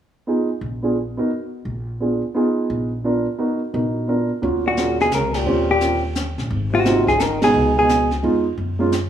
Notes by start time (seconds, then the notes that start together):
0.27 B3 D#4 F4 G#4
0.61 A#1
0.82 B3 D4 F4 G#4
1.17 B3 D#4 F#4 A#4
1.65 A#1
2.00 B3 D4 F4 G#4
2.35 B3 D#4 F4 G#4
2.70 A#1
3.04 B3 D4 F4 A#4
3.39 B3 D#4 F#4 A#4
3.73 A#1 B3 D#4 F#4 A#4
4.08 B3 D4 F4 A#4
4.42 D#2 A#3 C#4 F4 F#4, brush sweep, kick
4.65 A#2 F#4
4.77 A#3 C#4 F4 G#4, snare, hi-hat pedal
5.00 B2 G#4, snare
5.11 C#2 C#3 A#4, snare, hi-hat pedal
5.34 A#2 G4, snare, ride
5.46 D#2 C4 C#4 F4 G4, brush sweep
5.69 A#2 G4
5.81 C4 C#4 F4 A#4, snare, hi-hat pedal
6.15 snare, hi-hat pedal
6.38 A#1, snare
6.51 G#1, brush sweep, kick
6.72 C3 F#4
6.85 A#3 C4 D#4 F4, snare, hi-hat pedal
7.06 C3 G#4, kick, snare
7.19 D#3 A#4, snare, hi-hat pedal
7.41 B2 G#3 B3 D#4 G#4, snare, ride
7.54 C#2, brush sweep
7.76 B2 G#4
7.89 snare, hi-hat pedal
8.11 snare
8.23 F2 G#3 B3 D#4 F4
8.58 F#2, brush sweep, kick
8.79 G#3 A#3 C#4 F4
8.92 snare, hi-hat pedal